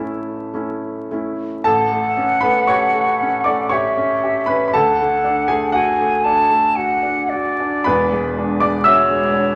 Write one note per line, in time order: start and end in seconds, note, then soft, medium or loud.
0.00 1.67 A1 soft
0.00 0.54 A3 soft
0.00 0.54 C#4 soft
0.00 0.55 E4 soft
0.00 1.07 A4 soft
0.00 1.69 B4 medium
0.00 1.69 E5 medium
0.00 1.10 A5 medium
0.00 1.70 B5 medium
0.54 1.07 A3 soft
0.54 1.08 C#4 soft
0.54 1.08 E4 soft
1.11 1.63 A3 soft
1.11 1.64 C#4 soft
1.11 1.63 E4 soft
1.64 4.70 A1 medium
1.64 2.40 A4 medium
1.64 3.75 F#5 medium
1.64 2.44 A5 medium
1.92 2.34 A3 soft
2.17 2.59 C#4 soft
2.41 2.85 A3 soft
2.41 2.67 B4 medium
2.41 2.68 B5 medium
2.67 3.11 G4 soft
2.67 3.42 C#5 medium
2.67 3.45 C#6 medium
2.94 3.36 A3 soft
3.22 3.63 C#4 soft
3.44 3.88 A3 soft
3.44 3.70 D5 medium
3.44 3.71 D6 medium
3.69 4.13 G4 soft
3.69 4.44 C#5 medium
3.69 4.76 E5 medium
3.69 4.47 C#6 medium
3.97 4.38 C#4 soft
4.23 4.64 G4 soft
4.46 4.73 C#4 soft
4.46 4.65 B4 medium
4.46 4.66 B5 medium
4.68 4.74 B5 medium
4.74 7.82 D2 medium
4.74 5.45 A4 medium
4.74 5.74 F#5 medium
4.74 5.49 A5 medium
5.01 5.40 A3 soft
5.24 5.64 D4 soft
5.48 5.89 A3 soft
5.48 5.72 G#4 medium
5.48 5.73 G#5 medium
5.72 6.74 F#4 medium
5.72 7.85 F#5 medium
5.72 6.26 G#5 medium
6.00 6.40 A3 soft
6.24 6.66 D4 soft
6.24 6.77 A5 medium
6.50 6.92 A3 soft
6.76 7.19 F#4 soft
6.76 7.31 F#5 medium
7.03 7.48 D4 soft
7.29 7.76 F#4 soft
7.29 8.61 D5 medium
7.60 7.87 D4 soft
7.84 9.55 E1 medium
7.84 9.55 E2 medium
7.84 8.58 B4 medium
7.84 8.61 B5 medium
8.12 8.52 G#3 soft
8.37 8.77 D4 soft
8.60 9.01 G#3 soft
8.60 8.84 D5 medium
8.60 8.86 D6 medium
8.84 9.24 F#4 soft
8.84 9.55 C#5 medium
8.84 9.54 E5 medium
8.84 9.55 E6 loud
9.11 9.49 G#3 soft
9.33 9.55 D4 soft